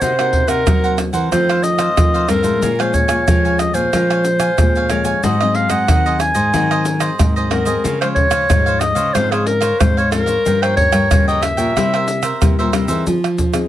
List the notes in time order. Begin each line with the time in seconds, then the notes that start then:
0.01 C3 A#3 D#4 F#4 A#4 C5 F#5, pandeiro, shaker, surdo
0.19 A#3 D#4 F#4 A#4 C5 F#5, pandeiro, tamborim, shaker
0.33 pandeiro, surdo
0.48 C3 A#4 C5 F#5, pandeiro, tamborim, shaker
0.66 C3 F#3 A#3 D#4 F#4 A#4 C5 F#5, pandeiro, tamborim, shaker, surdo
0.84 A#4 C5 F#5, pandeiro, shaker
0.98 muted cavaquinho stroke, pandeiro, tamborim, shaker
1.13 E3 A#4 C5 F#5, pandeiro, shaker
1.31 F2 D#3 F3 A3 C4 D#4 A4 C5 F5, pandeiro, tamborim, shaker, surdo
1.49 A4 C5 F5, pandeiro, tamborim, shaker
1.63 D#5, muted cavaquinho stroke, pandeiro, shaker
1.78 A4 C5 F5, pandeiro, tamborim, shaker
1.97 C3 D#3 F3 A3 C4, pandeiro, tamborim, shaker, surdo
2.14 A4 C5 F5, pandeiro, shaker
2.28 G2 D#3 A3 C4 D#4 A4 A#4 C5 F5, pandeiro, tamborim, shaker
2.43 A2 F3 G#3 C#4 A4 C5 F5, pandeiro, shaker
2.62 A#2 A#4 C#5 F5 G#5, pandeiro, shaker, surdo
2.79 F3 G#3 C#4 C5 C#5 F5 G#5, pandeiro, tamborim, shaker
2.94 C#5, pandeiro, shaker, surdo
3.08 A#2 C#5 F5 G#5, pandeiro, tamborim, shaker
3.27 F2 F3 G#3 C#4 A#4 C#5 F5 G#5, pandeiro, tamborim, shaker, surdo
3.45 C#5 F5 G#5, pandeiro, shaker
3.59 D#5, muted cavaquinho stroke, pandeiro, tamborim, shaker
3.74 A#2 C5 C#5 F5 G#5, pandeiro, shaker
3.93 A#2 F3 G#3 C#4 A#4 C#5 F5 G#5, pandeiro, tamborim, shaker, surdo
4.10 C#5 F5 G#5, pandeiro, tamborim, shaker
4.25 muted cavaquinho stroke, pandeiro, shaker
4.40 F5 G#5, pandeiro, tamborim, shaker
4.58 F2 A#2 F3 G#3 C#4, pandeiro, tamborim, shaker, surdo
4.75 C#5 F5 G#5, pandeiro, shaker
4.90 F3 G#3 C#4 A#4 C#5 F5 G#5, pandeiro, tamborim, shaker
5.04 C#5 F5 G#5, pandeiro, shaker
5.23 G#2 F#3 C4 D#4 F#4 G#4 C5 D#5, pandeiro, shaker, surdo
5.41 F#3 C4 D#4 G#4 C5 D#5, pandeiro, tamborim, shaker
5.55 F5, pandeiro
5.70 G#2 G#4 C5 D#5 F#5, pandeiro, tamborim, shaker
5.88 D#3 F#3 C4 D#4 F#4 G#4 C5 D#5, pandeiro, tamborim, shaker, surdo
6.06 G#4 C5 D#5, pandeiro, shaker
6.20 G#5, muted cavaquinho stroke, pandeiro, tamborim, shaker
6.34 G#2 G#4 C5 D#5, pandeiro, shaker
6.53 G#2 D#3 F#3 C4 D#4 F#4 G#4 C5 D#5, pandeiro, tamborim, shaker, surdo
6.71 G#4 C5 D#5, pandeiro, tamborim, shaker
6.85 muted cavaquinho stroke, pandeiro, shaker
7.00 G#4 C5 D#5, pandeiro, tamborim, shaker
7.19 G#2 D#3 F#3 C4 D#4, pandeiro, tamborim, shaker, surdo
7.36 G#4 C5 D#5, pandeiro, shaker
7.50 F#3 C4 D#4 F#4 G#4 A#4 C5 D#5, pandeiro, tamborim
7.65 F3 G#3 C4 G#4 C5 D#5, pandeiro, shaker
7.84 C#3 F4 C5 C#5 F5, pandeiro, shaker, surdo
8.01 F3 G#3 C5 C#5 F5, pandeiro, tamborim, shaker
8.15 C#5, pandeiro, surdo
8.30 C#3 C5 C#5 F5, pandeiro, tamborim, shaker
8.49 G#2 F3 G#3 F4 C5 C#5 F5, pandeiro, tamborim, shaker, surdo
8.66 C5 C#5 F5, pandeiro, shaker
8.80 D#5, muted cavaquinho stroke, pandeiro, tamborim, shaker
8.95 C#3 C5 C#5 F5, pandeiro, shaker
9.14 G#2 C#3 F3 G#3 C4 F4 C5 C#5 F5, pandeiro, tamborim, shaker, surdo
9.31 G#4 C5 C#5 F5, pandeiro, tamborim, shaker
9.46 A#4, muted cavaquinho stroke, pandeiro
9.60 C5 C#5 F5, pandeiro, tamborim, shaker
9.80 G#2 F3 G#3 C4 C5, pandeiro, tamborim, shaker, surdo
9.97 C5 C#5 F5, pandeiro, shaker
10.11 F3 G#3 C4 F4 A#4 C5 C#5 F5, pandeiro, tamborim, shaker
10.26 C5 C#5 F5, pandeiro, shaker
10.45 G2 F3 A#3 C#4 F4 A#4 C#5 G5, pandeiro, shaker, surdo
10.62 F3 A#3 C#4 A#4 C5 C#5 G5, pandeiro, tamborim, shaker
10.77 C#5, pandeiro, surdo
10.92 G2 A#4 C#5 G5, pandeiro, tamborim, shaker
11.11 G2 C#3 F3 A#3 C#4 F4 A#4 C#5 G5, pandeiro, tamborim, shaker, surdo
11.28 A#4 C#5 D#5 G5, pandeiro, shaker
11.42 E5, muted cavaquinho stroke, pandeiro, tamborim, shaker
11.57 A#2 A#4 C#5 G5, pandeiro, shaker
11.76 C3 G3 A#3 E4 A#4 C5 E5, pandeiro, tamborim, shaker, surdo
11.93 A#4 C5 E5, pandeiro, tamborim, shaker
12.07 muted cavaquinho stroke, pandeiro, shaker
12.22 A#4 C5 E5, pandeiro, tamborim, shaker
12.41 G2 C3 G3 A#3 E4, pandeiro, tamborim, shaker, surdo
12.59 A#2 A#4 C5 E5, pandeiro, shaker
12.73 C3 G3 A#3 E4 A#4 C5 E5, pandeiro, tamborim, shaker
12.88 E3 C4 D#4 G#4 A#4 C5 E5, pandeiro, shaker
13.07 F3, pandeiro, shaker, surdo
13.24 pandeiro, tamborim, shaker
13.38 pandeiro, shaker, surdo
13.53 C4 D#4 G#4, pandeiro, tamborim, shaker